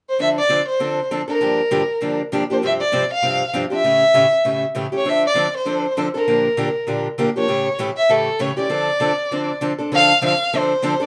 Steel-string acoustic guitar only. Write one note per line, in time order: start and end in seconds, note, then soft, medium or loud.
0.19 0.38 D3 soft
0.19 0.38 F3 soft
0.19 0.38 C4 soft
0.19 0.38 D4 medium
0.19 0.39 A4 medium
0.49 0.59 D3 medium
0.49 0.60 F3 medium
0.49 0.60 C4 medium
0.49 0.60 D4 medium
0.49 0.60 A4 medium
0.80 0.99 D3 medium
0.80 0.99 F3 medium
0.80 0.99 C4 medium
0.80 0.99 D4 medium
0.80 0.99 A4 medium
1.11 1.21 D3 medium
1.11 1.21 F3 medium
1.11 1.21 C4 medium
1.11 1.21 D4 medium
1.11 1.21 A4 medium
1.28 1.40 C4 soft
1.28 1.40 D4 soft
1.28 1.40 A4 medium
1.41 1.60 G2 medium
1.41 1.60 D3 medium
1.41 1.60 F3 medium
1.41 1.60 A#3 medium
1.41 1.60 D4 medium
1.41 1.60 G4 medium
1.71 1.81 G2 medium
1.71 1.81 D3 medium
1.71 1.81 F3 medium
1.71 1.82 A#3 medium
1.71 1.82 D4 medium
1.71 1.82 G4 medium
2.01 2.20 G2 medium
2.01 2.20 D3 medium
2.01 2.21 F3 medium
2.01 2.21 A#3 medium
2.01 2.21 D4 medium
2.01 2.21 G4 medium
2.32 2.42 G2 medium
2.32 2.42 D3 medium
2.32 2.42 F3 medium
2.32 2.43 A#3 medium
2.32 2.43 D4 medium
2.32 2.43 G4 medium
2.50 2.62 F3 soft
2.50 2.62 A#3 soft
2.50 2.62 D4 soft
2.50 2.62 G4 medium
2.62 2.81 G2 medium
2.62 2.81 C3 soft
2.62 2.82 F3 medium
2.62 2.82 C4 medium
2.62 2.82 D4 medium
2.62 2.82 G4 medium
2.92 3.03 G2 medium
2.92 3.03 C3 medium
2.92 3.03 F3 medium
2.92 3.03 C4 medium
2.92 3.03 D4 medium
2.92 3.03 G4 medium
3.22 3.42 G2 medium
3.22 3.42 C3 medium
3.22 3.42 F3 medium
3.22 3.42 C4 medium
3.22 3.42 D4 medium
3.22 3.42 G4 medium
3.53 3.64 G2 medium
3.53 3.64 C3 medium
3.53 3.64 F3 medium
3.53 3.64 C4 medium
3.53 3.64 D4 medium
3.53 3.64 G4 medium
3.70 3.84 F3 soft
3.70 3.83 C4 soft
3.70 3.83 D4 soft
3.70 3.83 G4 medium
3.84 4.03 A2 medium
3.84 4.03 C#3 medium
3.84 4.03 E3 medium
3.84 4.03 A3 medium
3.84 4.03 C#4 medium
3.84 4.03 G4 medium
4.14 4.24 A2 medium
4.14 4.24 C#3 medium
4.14 4.25 E3 medium
4.14 4.25 A3 medium
4.14 4.25 C#4 medium
4.14 4.25 G4 medium
4.45 4.64 A2 medium
4.45 4.64 C#3 medium
4.45 4.64 E3 medium
4.45 4.64 A3 medium
4.45 4.64 C#4 medium
4.45 4.64 G4 medium
4.75 4.85 A2 medium
4.75 4.85 C#3 medium
4.75 4.85 E3 medium
4.75 4.86 A3 medium
4.75 4.86 C#4 medium
4.75 4.86 G4 medium
4.92 5.05 E3 soft
4.92 5.05 A3 soft
4.92 5.05 C#4 soft
4.92 5.04 G4 soft
5.05 5.24 D3 medium
5.05 5.24 F3 medium
5.05 5.25 C4 medium
5.05 5.25 D4 medium
5.05 5.25 A4 medium
5.34 5.45 D3 medium
5.34 5.46 F3 medium
5.34 5.46 C4 medium
5.34 5.46 D4 medium
5.34 5.46 A4 medium
5.65 5.85 D3 medium
5.65 5.85 F3 medium
5.65 5.85 C4 medium
5.65 5.85 D4 medium
5.65 5.85 A4 medium
5.97 6.07 D3 medium
5.97 6.07 F3 medium
5.97 6.07 C4 medium
5.97 6.07 D4 medium
5.97 6.07 A4 medium
6.14 6.27 C4 soft
6.14 6.27 D4 soft
6.14 6.26 A4 soft
6.27 6.46 A#2 medium
6.27 6.46 D3 medium
6.27 6.46 F3 medium
6.27 6.46 A#3 medium
6.27 6.47 D4 medium
6.27 6.47 G4 medium
6.57 6.68 A#2 medium
6.57 6.68 D3 medium
6.57 6.68 F3 medium
6.57 6.68 A#3 medium
6.57 6.68 D4 medium
6.57 6.68 G4 medium
6.87 7.06 A#2 medium
6.87 7.07 D3 medium
6.87 7.07 F3 medium
6.87 7.07 A#3 medium
6.87 7.07 D4 medium
6.87 7.07 G4 medium
7.18 7.28 A#2 medium
7.18 7.28 D3 medium
7.18 7.29 F3 medium
7.18 7.29 A#3 medium
7.18 7.29 D4 medium
7.18 7.29 G4 medium
7.36 7.48 F3 soft
7.36 7.48 A#3 soft
7.36 7.48 D4 soft
7.36 7.48 G4 medium
7.48 7.67 A2 medium
7.48 7.67 C#3 medium
7.48 7.67 E3 medium
7.48 7.68 A3 medium
7.48 7.68 C#4 medium
7.48 7.68 G4 medium
7.79 7.89 A2 medium
7.79 7.89 C#3 medium
7.79 7.89 E3 medium
7.79 7.89 A3 medium
7.79 7.89 C#4 medium
7.79 7.90 G4 medium
8.09 8.28 A2 soft
8.09 8.28 C#3 medium
8.09 8.28 E3 medium
8.09 8.28 A3 medium
8.09 8.29 C#4 medium
8.09 8.29 G4 medium
8.39 8.50 A2 medium
8.39 8.50 C#3 medium
8.39 8.50 E3 medium
8.39 8.50 A3 medium
8.39 8.50 C#4 medium
8.39 8.50 G4 medium
8.57 8.69 E3 soft
8.57 8.69 A3 medium
8.57 8.69 C#4 soft
8.57 8.69 G4 medium
8.69 8.89 D3 medium
8.69 8.89 F3 medium
8.69 8.89 C4 medium
8.69 8.89 D4 medium
8.69 8.89 A4 medium
9.00 9.11 D3 medium
9.00 9.11 F3 medium
9.00 9.11 C4 medium
9.00 9.11 D4 medium
9.00 9.11 A4 medium
9.31 9.50 D3 medium
9.31 9.50 F3 medium
9.31 9.51 C4 medium
9.31 9.51 D4 medium
9.31 9.50 A4 medium
9.61 9.71 D3 medium
9.61 9.72 F3 medium
9.61 9.72 C4 medium
9.61 9.72 D4 medium
9.61 9.72 A4 medium
9.78 9.91 C4 soft
9.78 9.91 D4 soft
9.78 9.91 A4 medium
9.92 10.11 D3 medium
9.92 10.11 F3 medium
9.92 10.11 C4 medium
9.92 10.11 D4 medium
9.92 10.11 A4 medium
10.22 10.32 D3 medium
10.22 10.32 F3 medium
10.22 10.32 C4 medium
10.22 10.32 D4 medium
10.22 10.33 A4 medium
10.53 10.72 D3 medium
10.53 10.72 F3 medium
10.53 10.72 C4 medium
10.53 10.72 D4 medium
10.53 10.72 A4 medium
10.82 10.93 D3 medium
10.82 10.93 F3 medium
10.82 10.93 C4 medium
10.82 10.93 D4 medium
10.82 10.93 A4 medium
11.00 11.06 C4 soft
11.00 11.06 D4 medium
11.00 11.06 A4 medium